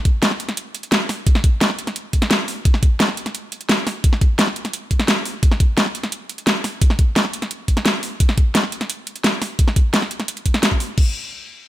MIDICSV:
0, 0, Header, 1, 2, 480
1, 0, Start_track
1, 0, Tempo, 346821
1, 1752, Time_signature, 4, 2, 24, 8
1, 16165, End_track
2, 0, Start_track
2, 0, Title_t, "Drums"
2, 71, Note_on_c, 9, 42, 68
2, 72, Note_on_c, 9, 36, 109
2, 210, Note_off_c, 9, 42, 0
2, 211, Note_off_c, 9, 36, 0
2, 312, Note_on_c, 9, 38, 119
2, 312, Note_on_c, 9, 42, 97
2, 432, Note_on_c, 9, 40, 37
2, 450, Note_off_c, 9, 38, 0
2, 450, Note_off_c, 9, 42, 0
2, 552, Note_on_c, 9, 42, 71
2, 570, Note_off_c, 9, 40, 0
2, 672, Note_off_c, 9, 42, 0
2, 672, Note_on_c, 9, 40, 37
2, 672, Note_on_c, 9, 42, 40
2, 792, Note_off_c, 9, 42, 0
2, 792, Note_on_c, 9, 42, 99
2, 810, Note_off_c, 9, 40, 0
2, 930, Note_off_c, 9, 42, 0
2, 1032, Note_on_c, 9, 42, 69
2, 1152, Note_off_c, 9, 42, 0
2, 1152, Note_on_c, 9, 42, 39
2, 1271, Note_off_c, 9, 42, 0
2, 1271, Note_on_c, 9, 38, 123
2, 1271, Note_on_c, 9, 42, 98
2, 1410, Note_off_c, 9, 38, 0
2, 1410, Note_off_c, 9, 42, 0
2, 1512, Note_on_c, 9, 40, 50
2, 1512, Note_on_c, 9, 46, 74
2, 1650, Note_off_c, 9, 40, 0
2, 1650, Note_off_c, 9, 46, 0
2, 1751, Note_on_c, 9, 42, 92
2, 1752, Note_on_c, 9, 36, 126
2, 1872, Note_on_c, 9, 40, 49
2, 1890, Note_off_c, 9, 36, 0
2, 1890, Note_off_c, 9, 42, 0
2, 1992, Note_on_c, 9, 36, 110
2, 1992, Note_on_c, 9, 42, 66
2, 2010, Note_off_c, 9, 40, 0
2, 2130, Note_off_c, 9, 36, 0
2, 2130, Note_off_c, 9, 42, 0
2, 2232, Note_on_c, 9, 38, 123
2, 2232, Note_on_c, 9, 42, 94
2, 2352, Note_on_c, 9, 40, 38
2, 2370, Note_off_c, 9, 38, 0
2, 2370, Note_off_c, 9, 42, 0
2, 2472, Note_on_c, 9, 42, 67
2, 2490, Note_off_c, 9, 40, 0
2, 2591, Note_off_c, 9, 42, 0
2, 2591, Note_on_c, 9, 40, 37
2, 2591, Note_on_c, 9, 42, 37
2, 2712, Note_off_c, 9, 42, 0
2, 2712, Note_on_c, 9, 42, 95
2, 2730, Note_off_c, 9, 40, 0
2, 2850, Note_off_c, 9, 42, 0
2, 2951, Note_on_c, 9, 42, 68
2, 2952, Note_on_c, 9, 36, 65
2, 3072, Note_off_c, 9, 42, 0
2, 3072, Note_on_c, 9, 40, 59
2, 3072, Note_on_c, 9, 42, 37
2, 3090, Note_off_c, 9, 36, 0
2, 3192, Note_off_c, 9, 42, 0
2, 3192, Note_on_c, 9, 38, 126
2, 3192, Note_on_c, 9, 42, 93
2, 3210, Note_off_c, 9, 40, 0
2, 3330, Note_off_c, 9, 38, 0
2, 3330, Note_off_c, 9, 42, 0
2, 3432, Note_on_c, 9, 46, 74
2, 3570, Note_off_c, 9, 46, 0
2, 3671, Note_on_c, 9, 42, 91
2, 3672, Note_on_c, 9, 36, 127
2, 3792, Note_on_c, 9, 40, 49
2, 3810, Note_off_c, 9, 36, 0
2, 3810, Note_off_c, 9, 42, 0
2, 3911, Note_on_c, 9, 42, 64
2, 3912, Note_on_c, 9, 36, 115
2, 3930, Note_off_c, 9, 40, 0
2, 4050, Note_off_c, 9, 36, 0
2, 4050, Note_off_c, 9, 42, 0
2, 4151, Note_on_c, 9, 38, 127
2, 4151, Note_on_c, 9, 42, 89
2, 4272, Note_on_c, 9, 40, 36
2, 4290, Note_off_c, 9, 38, 0
2, 4290, Note_off_c, 9, 42, 0
2, 4391, Note_on_c, 9, 42, 64
2, 4410, Note_off_c, 9, 40, 0
2, 4511, Note_off_c, 9, 42, 0
2, 4511, Note_on_c, 9, 40, 36
2, 4511, Note_on_c, 9, 42, 36
2, 4631, Note_off_c, 9, 42, 0
2, 4631, Note_on_c, 9, 42, 92
2, 4650, Note_off_c, 9, 40, 0
2, 4769, Note_off_c, 9, 42, 0
2, 4871, Note_on_c, 9, 42, 65
2, 4992, Note_off_c, 9, 42, 0
2, 4992, Note_on_c, 9, 42, 36
2, 5112, Note_off_c, 9, 42, 0
2, 5112, Note_on_c, 9, 38, 125
2, 5112, Note_on_c, 9, 42, 89
2, 5250, Note_off_c, 9, 38, 0
2, 5250, Note_off_c, 9, 42, 0
2, 5351, Note_on_c, 9, 40, 48
2, 5351, Note_on_c, 9, 46, 77
2, 5490, Note_off_c, 9, 40, 0
2, 5490, Note_off_c, 9, 46, 0
2, 5591, Note_on_c, 9, 42, 90
2, 5592, Note_on_c, 9, 36, 121
2, 5712, Note_on_c, 9, 40, 47
2, 5730, Note_off_c, 9, 36, 0
2, 5730, Note_off_c, 9, 42, 0
2, 5832, Note_on_c, 9, 36, 110
2, 5832, Note_on_c, 9, 42, 62
2, 5850, Note_off_c, 9, 40, 0
2, 5971, Note_off_c, 9, 36, 0
2, 5971, Note_off_c, 9, 42, 0
2, 6072, Note_on_c, 9, 38, 124
2, 6072, Note_on_c, 9, 42, 89
2, 6193, Note_on_c, 9, 40, 35
2, 6211, Note_off_c, 9, 38, 0
2, 6211, Note_off_c, 9, 42, 0
2, 6313, Note_on_c, 9, 42, 64
2, 6332, Note_off_c, 9, 40, 0
2, 6433, Note_off_c, 9, 42, 0
2, 6433, Note_on_c, 9, 40, 35
2, 6433, Note_on_c, 9, 42, 35
2, 6552, Note_off_c, 9, 42, 0
2, 6552, Note_on_c, 9, 42, 88
2, 6571, Note_off_c, 9, 40, 0
2, 6691, Note_off_c, 9, 42, 0
2, 6792, Note_on_c, 9, 36, 65
2, 6793, Note_on_c, 9, 42, 62
2, 6913, Note_off_c, 9, 42, 0
2, 6913, Note_on_c, 9, 40, 54
2, 6913, Note_on_c, 9, 42, 34
2, 6931, Note_off_c, 9, 36, 0
2, 7033, Note_off_c, 9, 42, 0
2, 7033, Note_on_c, 9, 38, 124
2, 7033, Note_on_c, 9, 42, 88
2, 7051, Note_off_c, 9, 40, 0
2, 7171, Note_off_c, 9, 38, 0
2, 7171, Note_off_c, 9, 42, 0
2, 7272, Note_on_c, 9, 46, 80
2, 7411, Note_off_c, 9, 46, 0
2, 7512, Note_on_c, 9, 36, 121
2, 7512, Note_on_c, 9, 42, 87
2, 7633, Note_on_c, 9, 40, 46
2, 7651, Note_off_c, 9, 36, 0
2, 7651, Note_off_c, 9, 42, 0
2, 7752, Note_on_c, 9, 36, 108
2, 7753, Note_on_c, 9, 42, 64
2, 7771, Note_off_c, 9, 40, 0
2, 7891, Note_off_c, 9, 36, 0
2, 7891, Note_off_c, 9, 42, 0
2, 7992, Note_on_c, 9, 38, 117
2, 7992, Note_on_c, 9, 42, 86
2, 8113, Note_on_c, 9, 40, 34
2, 8131, Note_off_c, 9, 38, 0
2, 8131, Note_off_c, 9, 42, 0
2, 8233, Note_on_c, 9, 42, 64
2, 8251, Note_off_c, 9, 40, 0
2, 8352, Note_off_c, 9, 42, 0
2, 8352, Note_on_c, 9, 40, 35
2, 8352, Note_on_c, 9, 42, 36
2, 8472, Note_off_c, 9, 42, 0
2, 8472, Note_on_c, 9, 42, 89
2, 8491, Note_off_c, 9, 40, 0
2, 8611, Note_off_c, 9, 42, 0
2, 8712, Note_on_c, 9, 42, 65
2, 8832, Note_off_c, 9, 42, 0
2, 8832, Note_on_c, 9, 42, 36
2, 8952, Note_off_c, 9, 42, 0
2, 8952, Note_on_c, 9, 38, 116
2, 8952, Note_on_c, 9, 42, 89
2, 9090, Note_off_c, 9, 38, 0
2, 9090, Note_off_c, 9, 42, 0
2, 9192, Note_on_c, 9, 40, 46
2, 9192, Note_on_c, 9, 46, 80
2, 9330, Note_off_c, 9, 40, 0
2, 9330, Note_off_c, 9, 46, 0
2, 9432, Note_on_c, 9, 36, 118
2, 9432, Note_on_c, 9, 42, 92
2, 9551, Note_on_c, 9, 40, 46
2, 9570, Note_off_c, 9, 36, 0
2, 9570, Note_off_c, 9, 42, 0
2, 9671, Note_on_c, 9, 42, 66
2, 9672, Note_on_c, 9, 36, 105
2, 9690, Note_off_c, 9, 40, 0
2, 9810, Note_off_c, 9, 36, 0
2, 9810, Note_off_c, 9, 42, 0
2, 9912, Note_on_c, 9, 38, 116
2, 9912, Note_on_c, 9, 42, 92
2, 10032, Note_on_c, 9, 40, 35
2, 10050, Note_off_c, 9, 38, 0
2, 10050, Note_off_c, 9, 42, 0
2, 10151, Note_on_c, 9, 42, 66
2, 10170, Note_off_c, 9, 40, 0
2, 10272, Note_off_c, 9, 42, 0
2, 10272, Note_on_c, 9, 40, 35
2, 10272, Note_on_c, 9, 42, 37
2, 10392, Note_off_c, 9, 42, 0
2, 10392, Note_on_c, 9, 42, 93
2, 10410, Note_off_c, 9, 40, 0
2, 10530, Note_off_c, 9, 42, 0
2, 10632, Note_on_c, 9, 36, 63
2, 10632, Note_on_c, 9, 42, 65
2, 10752, Note_off_c, 9, 42, 0
2, 10752, Note_on_c, 9, 40, 53
2, 10752, Note_on_c, 9, 42, 36
2, 10770, Note_off_c, 9, 36, 0
2, 10872, Note_off_c, 9, 42, 0
2, 10872, Note_on_c, 9, 38, 117
2, 10872, Note_on_c, 9, 42, 93
2, 10890, Note_off_c, 9, 40, 0
2, 11010, Note_off_c, 9, 38, 0
2, 11010, Note_off_c, 9, 42, 0
2, 11112, Note_on_c, 9, 46, 83
2, 11250, Note_off_c, 9, 46, 0
2, 11351, Note_on_c, 9, 42, 96
2, 11352, Note_on_c, 9, 36, 114
2, 11472, Note_on_c, 9, 40, 46
2, 11490, Note_off_c, 9, 36, 0
2, 11490, Note_off_c, 9, 42, 0
2, 11592, Note_on_c, 9, 36, 99
2, 11592, Note_on_c, 9, 42, 68
2, 11610, Note_off_c, 9, 40, 0
2, 11730, Note_off_c, 9, 36, 0
2, 11730, Note_off_c, 9, 42, 0
2, 11831, Note_on_c, 9, 38, 113
2, 11831, Note_on_c, 9, 42, 98
2, 11952, Note_on_c, 9, 40, 36
2, 11970, Note_off_c, 9, 38, 0
2, 11970, Note_off_c, 9, 42, 0
2, 12072, Note_on_c, 9, 42, 67
2, 12090, Note_off_c, 9, 40, 0
2, 12191, Note_off_c, 9, 42, 0
2, 12191, Note_on_c, 9, 40, 36
2, 12191, Note_on_c, 9, 42, 39
2, 12311, Note_off_c, 9, 42, 0
2, 12311, Note_on_c, 9, 42, 98
2, 12330, Note_off_c, 9, 40, 0
2, 12450, Note_off_c, 9, 42, 0
2, 12551, Note_on_c, 9, 42, 69
2, 12671, Note_off_c, 9, 42, 0
2, 12671, Note_on_c, 9, 42, 38
2, 12791, Note_off_c, 9, 42, 0
2, 12791, Note_on_c, 9, 38, 112
2, 12791, Note_on_c, 9, 42, 96
2, 12930, Note_off_c, 9, 38, 0
2, 12930, Note_off_c, 9, 42, 0
2, 13032, Note_on_c, 9, 40, 46
2, 13032, Note_on_c, 9, 46, 79
2, 13170, Note_off_c, 9, 40, 0
2, 13170, Note_off_c, 9, 46, 0
2, 13271, Note_on_c, 9, 42, 99
2, 13272, Note_on_c, 9, 36, 115
2, 13392, Note_on_c, 9, 40, 47
2, 13410, Note_off_c, 9, 36, 0
2, 13410, Note_off_c, 9, 42, 0
2, 13512, Note_on_c, 9, 36, 104
2, 13512, Note_on_c, 9, 42, 68
2, 13530, Note_off_c, 9, 40, 0
2, 13650, Note_off_c, 9, 36, 0
2, 13650, Note_off_c, 9, 42, 0
2, 13751, Note_on_c, 9, 38, 114
2, 13751, Note_on_c, 9, 42, 97
2, 13872, Note_on_c, 9, 40, 37
2, 13890, Note_off_c, 9, 38, 0
2, 13890, Note_off_c, 9, 42, 0
2, 13992, Note_on_c, 9, 42, 70
2, 14010, Note_off_c, 9, 40, 0
2, 14111, Note_off_c, 9, 42, 0
2, 14111, Note_on_c, 9, 40, 36
2, 14111, Note_on_c, 9, 42, 39
2, 14231, Note_off_c, 9, 42, 0
2, 14231, Note_on_c, 9, 42, 101
2, 14250, Note_off_c, 9, 40, 0
2, 14351, Note_off_c, 9, 42, 0
2, 14351, Note_on_c, 9, 42, 39
2, 14471, Note_off_c, 9, 42, 0
2, 14471, Note_on_c, 9, 42, 72
2, 14472, Note_on_c, 9, 36, 61
2, 14591, Note_off_c, 9, 42, 0
2, 14591, Note_on_c, 9, 40, 57
2, 14591, Note_on_c, 9, 42, 38
2, 14610, Note_off_c, 9, 36, 0
2, 14710, Note_off_c, 9, 42, 0
2, 14710, Note_on_c, 9, 38, 115
2, 14710, Note_on_c, 9, 42, 98
2, 14729, Note_off_c, 9, 40, 0
2, 14832, Note_on_c, 9, 36, 60
2, 14849, Note_off_c, 9, 38, 0
2, 14849, Note_off_c, 9, 42, 0
2, 14951, Note_on_c, 9, 46, 75
2, 14970, Note_off_c, 9, 36, 0
2, 15089, Note_off_c, 9, 46, 0
2, 15191, Note_on_c, 9, 49, 86
2, 15192, Note_on_c, 9, 36, 115
2, 15329, Note_off_c, 9, 49, 0
2, 15330, Note_off_c, 9, 36, 0
2, 16165, End_track
0, 0, End_of_file